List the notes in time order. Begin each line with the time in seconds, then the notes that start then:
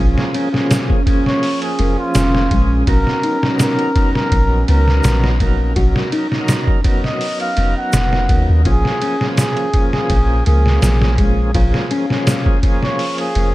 Already playing: F3 C#4
0.00 A#1 A#3 C#4 F4 G#4
0.18 snare
0.34 C#4, ride
0.53 F3 A#3 C#4 G#4, snare
0.71 snare, ride, shaker
0.90 kick
1.05 F3 A#3 C#4 G#4, kick, ride
1.26 C#5, snare
1.43 open hi-hat
1.62 G#4, ride
1.79 F1 A#3, ride
1.99 F4
2.15 F1, snare, ride, shaker
2.35 snare
2.51 A#1 G#3, kick, ride
2.87 A#1 F#3 B3 D#4 F#4 A#4, kick, ride
3.07 snare
3.23 D#4, ride
3.43 F#3 B3 D#4 A#4, snare
3.59 A#4, snare, ride, shaker
3.79 ride
3.95 F#3 B3 D#4 A#4, kick, ride
4.15 A#4, snare
4.32 A#1, kick, ride
4.68 C#2 B3 A#4, ride
4.88 snare
5.04 A#1, snare, ride, shaker
5.24 snare
5.40 A#3, kick, ride
5.76 A#1 F#3 D#4 F#4 A#4, kick, ride
5.96 snare
6.12 D#4, ride
6.31 F#3 D#4 A#4, snare
6.48 snare, ride, shaker
6.68 kick
6.84 F#3 B3 D#4 A#4, kick, ride
7.04 D#5, snare
7.21 open hi-hat
7.40 F5, ride
7.57 F1 B3, ride
7.77 F#5
7.93 F1, snare, ride, shaker
8.13 snare
8.29 D#2 A#3, kick, ride
8.49 D#2
8.65 A#1 F3 A#3 C#4 F4 G#4 F5, kick, ride
8.85 snare
9.02 C#4, ride
9.21 F3 A#3 C#4 G#4, snare
9.37 G#4, snare, ride, shaker
9.57 ride
9.73 F3 A#3 C#4 G#4, kick, ride
9.93 G#4, snare
10.10 A#1, kick, ride
10.46 C#2 A#3 G#4, ride
10.66 snare
10.82 A#1, snare, ride, shaker
11.02 snare
11.18 G#3, kick, ride
11.54 A#1 F3 A#3 C#4 F4 G#4, kick, ride
11.74 snare
11.91 C#4, ride
12.10 F3 A#3 C#4 G#4, snare
12.27 snare, ride, shaker
12.46 kick
12.62 F3 A#3 C#4 G#4, kick, ride
12.83 C#5, snare
12.99 open hi-hat
13.18 G#4, ride
13.35 F1 A#3, ride